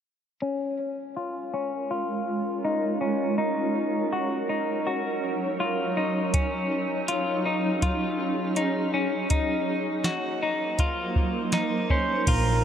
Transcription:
0.42 3.35 G#3 medium
0.42 1.16 C#4 medium
0.42 6.31 C#4 medium
0.42 3.35 F4 medium
0.42 6.31 A#4 medium
0.42 9.27 C#5 medium
1.17 1.53 F4 medium
1.54 1.90 C#4 medium
1.91 2.64 F4 medium
2.65 3.01 D#4 medium
3.01 3.38 C#4 medium
3.37 9.26 F#3 medium
3.37 12.22 D#4 medium
3.37 4.12 D#4 medium
4.13 4.49 F#4 medium
4.49 4.86 D#4 medium
4.87 5.60 F#4 medium
5.60 5.97 F4 medium
5.97 6.34 D#4 medium
6.34 9.27 C#4 medium
6.34 7.08 C#4 medium
6.34 9.27 G#4 medium
6.34 kick medium
6.34 closed hi-hat medium
7.08 7.46 F4 medium
7.08 closed hi-hat medium
7.46 7.83 D#4 medium
7.82 8.57 F4 medium
7.82 kick medium
7.82 closed hi-hat medium
8.56 8.93 D#4 medium
8.56 closed hi-hat medium
8.94 9.30 C#4 medium
9.30 12.24 F#3 medium
9.30 12.24 A#3 medium
9.30 10.05 D#4 medium
9.30 12.24 A#4 medium
9.30 12.24 C5 medium
9.30 kick medium
9.30 closed hi-hat medium
10.04 10.42 F#4 medium
10.04 snare loud
10.04 closed hi-hat medium
10.43 10.79 D#4 medium
10.79 11.53 F4 medium
10.79 kick medium
10.79 closed hi-hat medium
11.16 kick medium
11.52 11.90 D#4 medium
11.52 snare medium
11.52 closed hi-hat medium
11.90 12.27 C#4 medium
11.90 12.28 C5 medium
11.90 kick medium
12.27 12.64 A#1 medium
12.27 12.64 F4 medium
12.27 12.64 A#4 medium
12.27 kick loud
12.27 closed hi-hat medium
12.27 crash medium

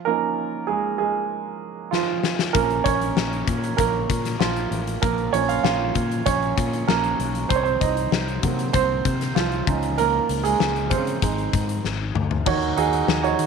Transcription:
0.00 0.06 F3 medium
0.00 1.91 F4 medium
0.05 0.47 F3 soft
0.05 0.65 A#3 medium
0.05 0.48 C#4 soft
0.05 0.48 D#4 soft
0.05 0.70 A#4 medium
0.67 0.76 G#3 medium
0.67 0.74 G#4 medium
0.98 1.89 G#3 medium
0.98 1.95 G#4 medium
1.91 2.51 F3 medium
1.91 2.56 F4 medium
1.91 snare soft
2.23 snare medium
2.39 snare medium
2.53 2.80 A#1 medium
2.53 2.95 F3 soft
2.53 2.84 A#3 medium
2.53 2.85 C#4 soft
2.53 2.83 A#4 medium
2.53 kick medium
2.53 closed hi-hat medium
2.70 closed hi-hat soft
2.84 3.11 A#1 medium
2.84 3.44 C#4 medium
2.84 3.43 C#5 medium
2.84 kick medium
2.84 closed hi-hat medium
3.01 closed hi-hat soft
3.16 3.42 A#1 medium
3.16 snare medium
3.33 closed hi-hat soft
3.47 3.73 A#2 medium
3.47 kick medium
3.47 closed hi-hat medium
3.64 closed hi-hat soft
3.77 4.04 A#1 medium
3.77 4.37 A#3 medium
3.77 4.36 A#4 medium
3.77 kick medium
3.77 closed hi-hat medium
4.09 4.35 A#2 medium
4.09 kick medium
4.09 closed hi-hat medium
4.25 snare soft
4.25 closed hi-hat soft
4.39 4.66 A#1 medium
4.39 4.99 F3 medium
4.39 5.04 F4 medium
4.39 snare medium
4.56 closed hi-hat soft
4.71 4.97 A1 medium
4.71 closed hi-hat medium
4.87 closed hi-hat soft
5.02 5.28 A#1 medium
5.02 5.32 A#3 medium
5.02 5.34 A#4 medium
5.02 kick medium
5.02 closed hi-hat medium
5.18 closed hi-hat soft
5.33 5.59 A#1 medium
5.33 6.86 F3 soft
5.33 6.87 A#3 soft
5.33 5.48 C#4 medium
5.33 5.49 C#5 medium
5.33 closed hi-hat medium
5.49 5.64 F4 medium
5.49 5.62 F5 medium
5.49 closed hi-hat soft
5.64 5.90 A#1 medium
5.64 6.23 F4 medium
5.64 6.28 F5 medium
5.64 snare medium
5.95 6.21 A#2 medium
5.95 kick medium
5.95 closed hi-hat medium
6.11 closed hi-hat soft
6.26 6.52 A#1 medium
6.26 6.85 C#4 medium
6.26 6.90 C#5 medium
6.26 kick medium
6.26 closed hi-hat medium
6.42 closed hi-hat soft
6.58 6.83 A#2 medium
6.58 kick medium
6.58 closed hi-hat medium
6.73 closed hi-hat soft
6.88 7.14 A#1 medium
6.88 7.16 F3 soft
6.88 7.47 A#3 medium
6.88 7.16 C#4 soft
6.88 7.52 A#4 medium
6.88 snare medium
7.04 closed hi-hat soft
7.19 7.45 B1 medium
7.19 closed hi-hat medium
7.35 closed hi-hat soft
7.49 7.76 C2 medium
7.49 7.57 C4 medium
7.49 7.57 C5 medium
7.49 kick medium
7.49 closed hi-hat medium
7.56 7.64 C#5 medium
7.63 7.81 C4 medium
7.63 7.81 C5 medium
7.63 closed hi-hat soft
7.81 8.07 C2 medium
7.81 8.40 D#4 medium
7.81 8.39 D#5 medium
7.81 kick medium
7.81 closed hi-hat medium
7.97 closed hi-hat soft
8.12 8.38 C2 medium
8.12 snare medium
8.28 closed hi-hat soft
8.43 8.69 C3 medium
8.43 9.32 F#3 soft
8.43 9.33 A#3 soft
8.43 8.74 C4 soft
8.43 kick medium
8.43 closed hi-hat medium
8.59 closed hi-hat soft
8.73 9.00 C2 medium
8.73 9.33 C4 medium
8.73 9.38 C5 medium
8.73 kick medium
8.73 closed hi-hat medium
9.05 9.31 C3 medium
9.05 kick medium
9.05 closed hi-hat medium
9.21 snare soft
9.21 closed hi-hat soft
9.35 9.62 C2 medium
9.35 9.65 F3 medium
9.35 9.94 F4 medium
9.35 snare medium
9.52 closed hi-hat soft
9.67 10.18 C#2 medium
9.67 10.56 F3 soft
9.67 10.56 C#4 soft
9.67 10.57 D#4 soft
9.67 kick medium
9.67 closed hi-hat medium
9.82 closed hi-hat soft
9.98 10.42 A#3 medium
9.98 10.46 A#4 medium
9.98 closed hi-hat medium
10.29 10.55 C#2 medium
10.29 closed hi-hat medium
10.44 10.88 G#3 medium
10.44 10.92 G#4 medium
10.44 closed hi-hat medium
10.60 10.93 C#2 medium
10.60 snare medium
10.76 closed hi-hat soft
10.90 11.17 C#3 medium
10.90 11.21 C4 medium
10.90 12.11 C5 medium
10.90 kick medium
10.90 closed hi-hat medium
11.07 closed hi-hat soft
11.22 11.48 G#1 medium
11.22 12.11 G#3 soft
11.22 12.11 C4 soft
11.22 12.12 D#4 soft
11.22 kick medium
11.22 closed hi-hat medium
11.38 closed hi-hat soft
11.53 11.79 G#2 medium
11.53 kick medium
11.53 closed hi-hat medium
11.69 closed hi-hat soft
11.84 12.10 G#1 medium
11.84 snare soft
12.15 12.40 D2 medium
12.15 mid tom medium
12.31 floor tom medium
12.46 12.72 D#2 medium
12.46 13.35 D#3 medium
12.46 12.71 D#4 medium
12.46 12.71 F#4 medium
12.46 12.72 C#5 medium
12.46 kick medium
12.46 crash medium
12.62 closed hi-hat soft
12.77 13.03 D#2 medium
12.77 13.15 D#4 medium
12.77 13.15 F#4 medium
12.77 13.15 G#4 medium
12.77 closed hi-hat medium
12.93 closed hi-hat soft
13.08 13.33 D#2 medium
13.08 snare medium
13.22 13.46 D#4 medium
13.22 13.46 F#4 medium
13.22 13.46 C#5 medium
13.22 closed hi-hat soft
13.39 13.46 D#3 medium
13.39 closed hi-hat medium

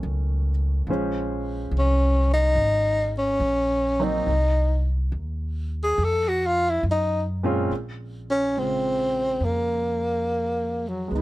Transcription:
0.00 0.86 C#2 medium
0.00 0.50 D#3 soft
0.00 0.50 F#3 soft
0.00 0.50 A3 soft
0.00 0.51 C#4 medium
0.87 1.70 A#1 medium
0.87 2.19 F3 medium
0.87 2.20 G#3 medium
0.87 2.20 C#4 medium
0.87 2.20 C5 medium
1.71 2.54 C2 medium
1.78 2.29 C#4 medium
2.33 3.13 D#4 loud
2.56 3.39 G#1 medium
3.18 4.05 C#4 medium
3.40 4.24 A#1 medium
4.00 4.25 F#3 medium
4.00 4.25 A#3 soft
4.00 4.25 C4 medium
4.00 4.26 D#4 medium
4.00 4.87 D#4 medium
4.27 5.10 C2 medium
5.12 5.95 D#2 medium
5.83 6.05 G#4 medium
5.98 6.81 F2 medium
6.04 6.30 A4 medium
6.28 6.48 F#4 medium
6.46 6.71 F4 medium
6.70 6.84 E4 medium
6.83 7.67 F#2 medium
6.91 7.24 D#4 medium
7.43 7.68 A#2 medium
7.43 7.68 G#3 medium
7.43 7.68 C4 medium
7.43 7.68 C#4 medium
7.43 7.69 F4 medium
7.70 9.37 A#1 medium
8.30 8.60 C#4 medium
8.57 11.12 C#3 soft
8.57 11.07 G#3 soft
8.57 11.12 C4 soft
8.57 9.46 C4 medium
8.57 11.12 F4 soft
9.40 11.07 F2 medium
9.44 10.89 A#3 medium
10.88 11.13 F#3 medium
11.08 11.22 C#2 medium
11.08 11.22 G#3 medium
11.08 11.22 B3 soft
11.15 11.22 E3 medium
11.15 11.22 D#4 soft
11.15 11.22 E4 medium

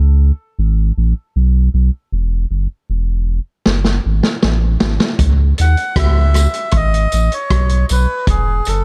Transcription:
0.00 0.32 C#2 loud
0.59 0.92 G#1 loud
0.98 1.14 A1 loud
1.36 1.69 B1 medium
1.74 1.90 B1 medium
2.12 2.46 E1 loud
2.51 2.67 F#1 medium
2.90 3.40 E1 loud
3.66 4.00 F#1 medium
3.66 snare medium
3.84 snare medium
4.06 4.22 G#1 medium
4.23 snare medium
4.43 4.77 A1 loud
4.43 snare medium
4.80 4.99 G#1 medium
4.80 snare medium
5.00 snare medium
5.19 5.54 C#2 loud
5.19 kick loud
5.19 closed hi-hat loud
5.58 5.76 D#2 medium
5.58 5.95 F#5 loud
5.58 closed hi-hat medium
5.58 tambourine medium
5.77 closed hi-hat medium
5.96 6.47 C#2 loud
5.96 6.77 E5 loud
5.96 kick loud
5.96 cross-stick loud
5.96 closed hi-hat loud
6.34 cross-stick medium
6.34 closed hi-hat medium
6.34 tambourine medium
6.54 closed hi-hat medium
6.71 7.07 G#1 loud
6.71 kick loud
6.71 closed hi-hat loud
6.71 high woodblock medium
6.76 7.34 D#5 loud
6.94 closed hi-hat medium
7.12 7.30 A1 loud
7.12 closed hi-hat medium
7.12 tambourine medium
7.32 7.86 C#5 loud
7.32 closed hi-hat medium
7.50 7.85 B1 medium
7.50 kick medium
7.50 cross-stick loud
7.50 closed hi-hat medium
7.69 closed hi-hat medium
7.89 8.07 B1 medium
7.89 8.26 B4 medium
7.89 closed hi-hat medium
7.89 tambourine medium
8.27 8.61 E1 loud
8.27 8.68 G#4 medium
8.27 kick loud
8.27 closed hi-hat medium
8.65 8.84 F#1 medium
8.65 8.84 A4 medium
8.65 closed hi-hat medium
8.65 tambourine medium

